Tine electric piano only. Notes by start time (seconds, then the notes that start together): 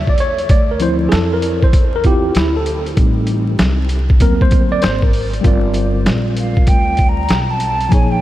Already playing: C#3 G3 F4
0.09 D5
0.20 C#5
0.51 D5
0.71 A#4
0.80 F3 C4 E4 C5
1.09 G#4 A4
1.33 A#4
1.64 C5
1.96 A#4
2.05 C4 E4 F4 G4
2.37 E4
2.56 A4
2.97 G3 C4 D#4
4.20 F#3 A#3 C4 A#4
4.42 C5
4.72 D5
4.83 C5
5.03 A#4
5.41 G3 C4 F4
5.46 A#4 D5
7.89 F3 A#3 D#4
7.93 G#4 C#5